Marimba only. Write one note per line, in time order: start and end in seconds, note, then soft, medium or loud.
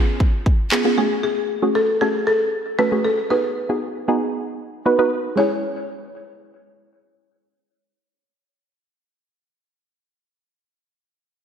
0.00 0.16 G#4 medium
0.72 0.96 G#4 medium
0.98 1.22 G#4 medium
1.23 1.77 G#4 medium
1.75 1.87 A4 medium
2.01 2.28 G#4 medium
2.27 2.75 A4 loud
2.79 3.05 B4 loud
3.05 3.31 A4 loud
3.30 4.82 B4 loud
5.37 9.89 C#5 medium